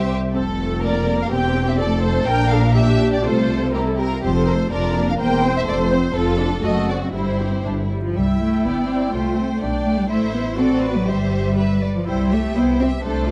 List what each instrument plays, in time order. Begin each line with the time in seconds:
Already playing: double bass section C2, cello section C2, violin section G4 E5
0.33 double bass section F1, cello section F2, viola section C4 A4, violin section A4
0.60 viola section A3
0.82 viola section A#3 A#4, violin section A#4 D5
1.22 violin section F5
1.30 double bass section E1, cello section E2, viola section C4 G4, violin section G4 G5
1.69 violin section E5
1.79 double bass section F1, cello section F2, viola section A3 A4, violin section A4 D5
2.03 violin section C5
2.27 double bass section A#1, cello section A#2, viola section D4 A#4, violin section A#4 G5
2.50 viola section A4, violin section F5
2.74 viola section D4 G4, violin section G4 E5
3.13 violin section D5
3.24 double bass section C2, cello section C3, viola section A3 F4, violin section A4 C5
3.73 viola section G3 E4, violin section G4 A#4
3.86 violin section A4
3.98 violin section G4 A#4
4.10 violin section F4
4.21 double bass section F1, cello section F2, viola section C4 F4, violin section G4 C5
4.35 violin section A4
4.46 viola section A3 A4, violin section A#4
4.59 violin section C5
4.71 double bass section F1, cello section F2, viola section D4 F4, violin section A#4 D5
4.95 viola section A#3 D4
5.09 violin section F5
5.18 double bass section E1, cello section E2, viola section A#3 A#4, violin section C5 G5
5.43 viola section C4 C5
5.57 violin section E5
5.67 double bass section F1, cello section F2, viola section A3 A4, violin section D5
5.90 viola section C4 C5, violin section C5
6.15 double bass section F1, cello section F2, viola section F4 A4, violin section A4
6.38 viola section D4 F4
6.63 double bass section F#1, cello section F#2, viola section A3 A4, violin section F#4 D#5
6.88 viola section C4 F#4, violin section D5
7.13 double bass section G1, cello section G2, viola section G3 E4, violin section E4 C5
7.39 viola section C4 G4
7.64 double bass section G1, cello section G2, viola section D4
7.90 viola section G3, cello section G3
8.03 cello section F3
8.15 double bass section C2, cello section G3, viola section E4, violin section E5 G5
8.41 cello section A3
8.64 double bass section G1, cello section B3, violin section D5
8.88 cello section C4
9.11 double bass section C2, cello section A3, viola section F4, violin section C5
9.37 viola section C4
9.60 double bass section B1, viola section D4, violin section D5 G5
9.84 cello section A3
9.98 cello section G3
10.09 double bass section A1, cello section A3, viola section E4, violin section C5 E5
10.34 cello section B3
10.57 cello section C4, viola section F#4, violin section A4 D5
10.82 violin section B4
10.96 cello section F#3
11.07 double bass section G1, cello section G3, viola section G4, violin section C5 E5
11.57 viola section G4, violin section B4 E5
11.82 cello section G3, violin section D5
11.96 cello section F3
12.06 double bass section C2, cello section G3, viola section E4, violin section C5 G5
12.31 cello section A3, viola section G4, violin section E5
12.55 double bass section C2, cello section B3, viola section E4, violin section C5 G5
12.80 cello section C4, viola section G4, violin section E5
13.03 double bass section C2, cello section A3, viola section D4, violin section A4 C5
13.27 viola section F4, violin section C5 D5